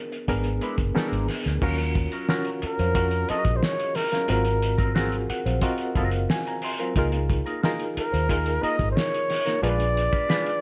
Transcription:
Already playing: B3 D4 F#4 G#4 A#4
0.12 muted clean electric guitar stroke, closed hi-hat
0.28 G#1 B3 D4 G#4 A#4, kick, closed hi-hat
0.44 muted clean electric guitar stroke, closed hi-hat
0.61 G#3 D4 E4 B4, closed hi-hat
0.78 F#1, muted clean electric guitar stroke, kick, closed hi-hat
0.94 G3 B3 C#4 D4 D#4 G#4 A4 A#4, muted fingered electric bass stroke, snare
1.08 G#3 D4 E4 A#4
1.12 G#1, closed hi-hat
1.28 snare, open hi-hat
1.45 D2, muted clean electric guitar stroke, snare, closed hi-hat
1.62 D#2 F#3 C#4 F4 F#4 A#4 C#5, kick, crash
1.78 muted clean electric guitar stroke, closed hi-hat
1.95 muted clean electric guitar stroke, kick, closed hi-hat
2.12 F#3 C#4 F4 A#4, closed hi-hat
2.28 F#3 C#4 F4 F#4 A#4, snare
2.45 closed hi-hat
2.62 A#4, muted clean electric guitar stroke, muted fingered electric bass stroke, closed hi-hat
2.79 F2 F#3 C#4 F4 C5, closed hi-hat
2.95 C#4 F4 F#4 A#4, kick, closed hi-hat
3.11 muted clean electric guitar stroke, closed hi-hat
3.28 F#3 C#4 F4 G#4 A#4 D#5, muted fingered electric bass stroke, closed hi-hat
3.45 A#1, kick, closed hi-hat
3.50 D#5
3.56 C5
3.63 C#5, muted clean electric guitar stroke, snare
3.72 F5
3.79 muted clean electric guitar stroke, closed hi-hat
3.95 A#4, snare, open hi-hat
4.12 F#3 C#4 F4 A#4, snare, closed hi-hat
4.28 G#1 F#3 C4 F4 F#4 A#4, closed hi-hat
4.45 muted clean electric guitar stroke, closed hi-hat
4.62 muted clean electric guitar stroke, closed hi-hat
4.78 F#3 C4 F4 A#4, kick, closed hi-hat
4.94 F#3 C4 F4 F#4 G#4 A#4, snare
5.12 closed hi-hat
5.29 F#5, muted clean electric guitar stroke, muted fingered electric bass stroke, closed hi-hat
5.46 A#1 F#3 C4 F4 C5, closed hi-hat
5.61 C4 F4 F#4 A#4 D#5, kick, closed hi-hat
5.78 F#5, muted clean electric guitar stroke, closed hi-hat
5.95 F#1 F#3 C4 F4 A#4 F5, kick, closed hi-hat
6.11 muted clean electric guitar stroke, closed hi-hat
6.29 G#5, muted clean electric guitar stroke, snare
6.46 A#5, muted clean electric guitar stroke, closed hi-hat
6.62 C6, open hi-hat
6.79 F#3 C4 F4 A#4, closed hi-hat
6.96 C#2 A#3 D#4 F4 G#4 A#4, kick, closed hi-hat
7.12 muted clean electric guitar stroke, closed hi-hat
7.29 muted clean electric guitar stroke, kick, closed hi-hat
7.46 A#3 D#4 F4 A#4, closed hi-hat
7.63 A#3 D#4 F4 G#4 A#4, snare
7.80 closed hi-hat
7.96 A#4, muted clean electric guitar stroke, muted fingered electric bass stroke, closed hi-hat
8.12 D#2 A#3 D#4 F4 C5, closed hi-hat
8.29 D#4 F4 G#4 A#4, kick, closed hi-hat
8.46 muted clean electric guitar stroke, closed hi-hat
8.62 A#3 D#4 F4 A#4 D#5, muted fingered electric bass stroke, closed hi-hat
8.79 G#1, kick, closed hi-hat
8.91 C5
8.95 C#5, muted clean electric guitar stroke, snare
9.12 muted clean electric guitar stroke, closed hi-hat
9.30 snare, open hi-hat
9.46 A#3 D#4 F4 A#4, snare, closed hi-hat
9.62 A#1 G#3 D4 F4 G#4 A#4 B4 D5, closed hi-hat
9.70 B4
9.79 muted clean electric guitar stroke, closed hi-hat
9.96 muted clean electric guitar stroke, closed hi-hat
10.12 G#3 D4 F4 B4, kick, closed hi-hat
10.29 G#3 D4 F4 G#4 B4, snare
10.47 closed hi-hat

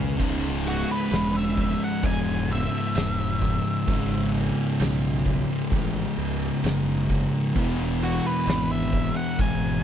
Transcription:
Already playing: C#2 C#3 C#4
0.17 C#1 C#2 G#2 C#3, kick, crash
0.65 F#4, crash
0.91 B4
1.11 E1, snare, crash
1.36 E5
1.57 kick, crash
1.84 F#5
2.03 E1 G#5, kick, crash
2.50 E5, crash
2.95 E1, snare, crash
3.42 kick, crash
3.87 G#1 C#2 G#2 C#3, kick, crash
4.34 crash
4.80 B1, snare, crash
5.26 kick, crash
5.71 A1, kick, crash
6.17 C#2, crash
6.63 F#1, snare, crash
7.10 kick, crash
7.55 E1 E2 B2 E3, kick, crash
8.02 F#4, crash
8.27 B4
8.46 G#1, snare, crash
8.72 E5
8.93 kick, crash
9.17 F#5
9.39 G#1 G#5, kick, crash

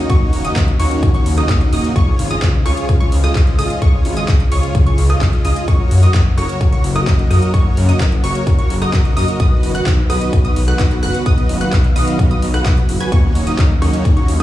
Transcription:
Already playing: C#3 A#3 D#4 F#4
0.10 D#2 A#3 C#4 D#4 F#4 C#5 C#6, kick, closed hi-hat
0.33 D#1, open hi-hat
0.45 A#3 C#4 D#4 F#4 D#5 D#6, closed hi-hat
0.56 D#2, kick, clap, closed hi-hat
0.68 closed hi-hat
0.79 D#2 A#3 C#4 D#4 F#4 C#5 C#6, open hi-hat
0.91 closed hi-hat
1.03 D#2, kick, closed hi-hat
1.14 A#3 C#4 D#4 F#4 C#5 C#6, closed hi-hat
1.26 D#2, open hi-hat
1.38 A#3 C#4 D#4 F#4 D#5 D#6, cross-stick, closed hi-hat
1.49 D#2, kick, clap, closed hi-hat
1.61 closed hi-hat
1.73 D#1 A#3 C#4 D#4 F#4 D#5 D#6, open hi-hat
1.84 closed hi-hat
1.96 C#2 F3 G#3 F4 G#4 C#5 C#6, kick, closed hi-hat
2.19 G#1, open hi-hat
2.31 F4 G#4 D#5 D#6, closed hi-hat
2.42 C#2, kick, clap, closed hi-hat
2.66 C#2 F4 G#4 C#5 C#6, cross-stick, open hi-hat
2.77 closed hi-hat
2.89 C#2, kick, closed hi-hat
3.00 F4 G#4 C#5 C#6, closed hi-hat
3.12 C#2, open hi-hat
3.24 F4 G#4 D#5 D#6, cross-stick, closed hi-hat
3.35 C#2, kick, clap, closed hi-hat
3.47 closed hi-hat
3.59 G#1 F4 G#4 D#5 D#6, cross-stick, open hi-hat
3.70 closed hi-hat
3.82 C#2 F4 G#4 C#5 C#6, kick, closed hi-hat
4.05 G#1, open hi-hat
4.17 F4 G#4 D#5 D#6, closed hi-hat
4.28 C#2, kick, clap, closed hi-hat
4.40 closed hi-hat
4.52 C#2 F4 G#4 C#5 C#6, open hi-hat
4.63 closed hi-hat
4.75 C#2, kick, closed hi-hat
4.86 F4 G#4 C#5 C#6, closed hi-hat
4.98 C#2, open hi-hat
5.10 F4 G#4 D#5 D#6, cross-stick, closed hi-hat
5.21 C#2, kick, clap, closed hi-hat
5.33 closed hi-hat
5.45 C#2 F4 G#4 D#5 D#6, open hi-hat
5.56 closed hi-hat
5.68 F#1 C#3 F#3 A#3 F#4 A#4 C#5 C#6, kick, closed hi-hat
5.91 F#2, open hi-hat
6.03 F#4 A#4 D#5 D#6, closed hi-hat
6.14 F#1, kick, clap, closed hi-hat
6.37 F#1 F#4 A#4 C#5 C#6, cross-stick, open hi-hat
6.49 closed hi-hat
6.61 F#1, kick, closed hi-hat
6.72 F#4 A#4 C#5 C#6, closed hi-hat
6.84 F#1, open hi-hat
6.96 F#4 A#4 D#5 D#6, cross-stick, closed hi-hat
7.07 F#1, kick, clap, closed hi-hat
7.19 closed hi-hat
7.30 F#2 F#4 A#4 D#5 D#6, cross-stick, open hi-hat
7.42 closed hi-hat
7.54 F#1 F#4 A#4 C#5 C#6, kick, closed hi-hat
7.77 F#2, open hi-hat
7.89 F#4 A#4 D#5 D#6, closed hi-hat
8.00 F#1, kick, clap, closed hi-hat
8.12 closed hi-hat
8.24 F#1 F#4 A#4 C#5 C#6, open hi-hat
8.35 closed hi-hat
8.47 F#1, kick, closed hi-hat
8.58 F#4 A#4 C#5 C#6, closed hi-hat
8.70 F#1, open hi-hat
8.82 F#4 A#4 D#5 D#6, cross-stick, closed hi-hat
8.93 F#1, kick, clap, closed hi-hat
9.05 closed hi-hat
9.17 F#2 F#4 A#4 D#5 D#6, open hi-hat
9.28 closed hi-hat
9.40 B1 D#3 F#3 B3 F#4 B4 D#5 D#6, kick, closed hi-hat
9.63 F#1, open hi-hat
9.75 F#4 B4 F#5 F#6, closed hi-hat
9.86 B1, kick, clap, closed hi-hat
10.10 B1 F#4 B4 D#5 D#6, cross-stick, open hi-hat
10.21 closed hi-hat
10.33 B1, kick, closed hi-hat
10.45 F#4 B4 D#5 D#6, closed hi-hat
10.56 B1, open hi-hat
10.68 F#4 B4 F#5 F#6, cross-stick, closed hi-hat
10.79 B1, kick, clap, closed hi-hat
10.91 closed hi-hat
11.03 F#1 F#4 B4 F#5 F#6, cross-stick, open hi-hat
11.14 closed hi-hat
11.26 B1 F#4 B4 D#5 F5 D#6, kick, closed hi-hat
11.38 closed hi-hat
11.49 F#1, open hi-hat
11.61 F#4 B4 F#5 F#6, closed hi-hat
11.73 B1, kick, clap, closed hi-hat
11.84 closed hi-hat
11.96 B1 F#4 B4 D#5 D#6, open hi-hat
12.08 closed hi-hat
12.19 B1, kick, closed hi-hat
12.31 F#4 B4 D#5 D#6, closed hi-hat
12.42 B1, open hi-hat
12.54 F#4 B4 F#5 F#6, cross-stick, closed hi-hat
12.66 B1, kick, clap, closed hi-hat
12.77 closed hi-hat
12.89 F#1, open hi-hat
13.00 F#4 B4 G#5 G#6, closed hi-hat
13.12 D#2 C#3 A#3 C#4 D#4 F#4 C#5 C#6, kick, closed hi-hat
13.35 D#1, open hi-hat
13.47 A#3 C#4 D#4 F#4 D#5 D#6, closed hi-hat
13.59 D#2, kick, clap, closed hi-hat
13.82 D#2 A#3 C#4 D#4 F#4 C#5 C#6, cross-stick, open hi-hat
13.94 closed hi-hat
14.05 D#2, kick, closed hi-hat
14.17 A#3 C#4 D#4 F#4 C#5 C#6, closed hi-hat
14.28 D#2, open hi-hat

